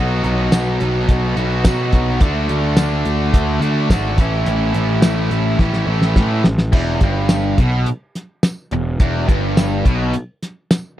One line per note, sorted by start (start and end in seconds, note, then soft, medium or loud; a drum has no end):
0.00 0.23 B1 medium
0.00 1.35 B2 medium
0.00 1.35 F#3 medium
0.00 1.36 B3 medium
0.00 1.36 D#4 medium
0.00 1.35 F#4 loud
0.24 0.51 B1 medium
0.24 closed hi-hat medium
0.52 0.79 B1 medium
0.52 snare loud
0.52 closed hi-hat medium
0.52 tambourine loud
0.80 1.08 B1 medium
0.80 closed hi-hat medium
1.08 1.36 B1 medium
1.08 kick medium
1.08 closed hi-hat medium
1.36 1.64 B1 medium
1.36 1.63 B2 medium
1.36 1.64 F#3 medium
1.36 1.64 B3 medium
1.36 1.64 D#4 medium
1.36 1.63 F#4 medium
1.36 closed hi-hat medium
1.64 2.19 B2 medium
1.64 1.92 B2 medium
1.64 2.20 F#3 medium
1.64 2.20 B3 medium
1.64 2.21 D#4 medium
1.64 2.21 F#4 medium
1.64 kick medium
1.64 snare loud
1.64 closed hi-hat loud
1.64 tambourine loud
1.93 2.20 B1 medium
1.93 kick medium
1.93 closed hi-hat medium
2.21 2.48 D2 medium
2.21 3.61 D3 medium
2.21 3.61 A3 medium
2.21 3.61 D4 medium
2.21 kick loud
2.21 closed hi-hat medium
2.25 3.60 F#4 medium
2.49 2.76 D2 medium
2.49 closed hi-hat medium
2.77 3.05 D2 medium
2.77 snare loud
2.77 closed hi-hat medium
2.77 tambourine loud
3.05 3.33 D2 medium
3.05 closed hi-hat medium
3.34 3.60 D2 medium
3.34 kick medium
3.34 closed hi-hat medium
3.60 3.89 D2 medium
3.60 3.90 A3 medium
3.60 3.89 D4 medium
3.60 3.89 F#4 medium
3.60 closed hi-hat medium
3.65 3.88 D3 medium
3.90 4.17 G#1 medium
3.90 4.17 D3 medium
3.90 4.18 A3 medium
3.90 4.18 D4 medium
3.90 4.19 F#4 medium
3.90 kick medium
3.90 snare loud
3.90 closed hi-hat loud
3.90 tambourine loud
4.18 4.46 A1 medium
4.18 5.58 A2 medium
4.18 5.59 E3 medium
4.18 5.59 A3 loud
4.18 5.60 C#4 loud
4.18 5.60 E4 loud
4.18 kick loud
4.18 closed hi-hat medium
4.46 4.74 A1 medium
4.46 closed hi-hat medium
4.74 5.02 A1 medium
4.74 closed hi-hat medium
5.02 5.31 A1 medium
5.02 snare loud
5.02 closed hi-hat medium
5.02 tambourine loud
5.31 5.58 A1 medium
5.31 closed hi-hat medium
5.59 5.86 A1 medium
5.59 5.86 A2 medium
5.59 5.87 E3 medium
5.59 5.87 A3 medium
5.59 5.87 C#4 medium
5.59 5.86 E4 medium
5.59 kick medium
5.59 snare medium
5.73 snare medium
5.87 6.15 A1 medium
5.87 6.45 A2 medium
5.87 6.44 E3 medium
5.87 6.44 A3 medium
5.87 6.43 C#4 medium
5.87 6.43 E4 medium
6.02 snare medium
6.16 6.44 A2 loud
6.16 kick medium
6.16 snare medium
6.44 6.72 A1 medium
6.44 snare medium
6.58 snare medium
6.72 7.00 E1 medium
6.72 7.01 E2 medium
6.72 kick loud
6.72 crash loud
7.01 7.54 G1 medium
7.01 7.58 G2 loud
7.01 kick loud
7.01 closed hi-hat medium
7.29 snare loud
7.29 closed hi-hat medium
7.29 tambourine loud
7.58 7.85 B1 medium
7.58 7.87 B2 medium
7.58 kick loud
7.58 closed hi-hat medium
7.86 closed hi-hat medium
8.15 snare soft
8.15 closed hi-hat medium
8.43 snare loud
8.43 closed hi-hat medium
8.43 tambourine loud
8.71 8.99 E1 medium
8.71 8.95 E2 medium
8.71 closed hi-hat medium
9.00 9.27 E1 medium
9.00 9.28 E2 medium
9.00 kick loud
9.00 closed hi-hat medium
9.29 9.82 G1 medium
9.29 9.85 G2 medium
9.29 kick loud
9.29 closed hi-hat medium
9.57 snare loud
9.57 closed hi-hat medium
9.57 tambourine loud
9.85 10.12 B1 medium
9.85 10.13 B2 loud
9.85 kick medium
9.85 closed hi-hat medium
10.14 closed hi-hat medium
10.43 snare soft
10.43 closed hi-hat medium
10.71 snare loud
10.71 closed hi-hat medium
10.71 tambourine loud